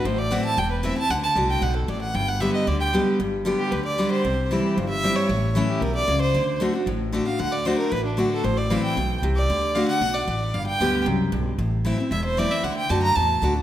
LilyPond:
<<
  \new Staff \with { instrumentName = "Fiddle" } { \time 4/4 \key g \major \tempo 4 = 229 c''8 d''8 fis''8 a''8 g''8 b'8 e''8 a''8 | fis''8 a''8 r8 g''8 fis''8 a'8 d''8 fis''8 | g''8 fis''8 e''8 ees''8 d''8 g''8 r4 | r4. g'8 b'8 d''4 c''8~ |
c''4 r8 g'8 c''8 e''4 cis''8~ | cis''4 r8 g'8 bes'8 d''4 c''8~ | c''4 r2 r8 f''8 | fis''8 d''8 c''8 bes'8 b'8 d'8 fis'8 a'8 |
c''8 d''8 f''8 g''4. r8 d''8~ | d''4 f''8 fis''4 d''4. | f''8 g''4. r2 | r2 e''8 c''8 d''8 e''8 |
fis''8 g''8 a''8 bes''8 a''4 r4 | }
  \new Staff \with { instrumentName = "Steel-string acoustic guitar" } { \time 4/4 \key g \major << { r4 <e a c' e'>4 r4 <e a c' e'>8 <c' e'>8 | r4 <d a d' fis'>4 r2 | r4 <d g b g'>4 r4 <d g b g'>4 | r4 <d g b g'>4 r4 <d g b g'>4 |
r4 <e g c' e'>4 r4 <e g c' e'>4 | r4 <e a cis' e'>4 r2 | r4 <d a d' fis'>8 <d' fis'>8 r4 <d a d' fis'>8 <d' fis'>8 | r4 <d a d' fis'>4 r4 <d a d' fis'>4 |
r4 <e a c' e'>4 r2 | r4 <d a d' fis'>4 r2 | r4 <d g b g'>4 r2 | r4 <e a c' e'>8 <c' e'>8 r4 <e a c' e'>4 |
r4 <d a d' fis'>4 r4 <d a d' fis'>8 <d' fis'>8 | } \\ { a,2 e,2 | d2 b,4 a,4 | g,2 d2 | g,2 d2 |
c2 g,2 | a,2 b,4 cis4 | d2 a,2 | d2 a,2 |
a,2 b,4 c4 | d2 b,4 a,4 | g,2 fis,4 g,4 | a,2 e,2 |
d2 a,2 | } >> }
  \new Staff \with { instrumentName = "Upright bass" } { \clef bass \time 4/4 \key g \major a,,2 e,,2 | d,4 c,4 b,,4 a,,4 | g,,2 d,2 | g,,2 d,2 |
c,2 g,,2 | a,,2 b,,4 cis,4 | d,2 a,,2 | d,2 a,,2 |
a,,2 b,,4 c,4 | d,2 b,,4 a,,4 | g,,4 d,4 c,4 b,,4 | a,,2 e,,2 |
d,4 fis,4 e,4 d,4 | }
>>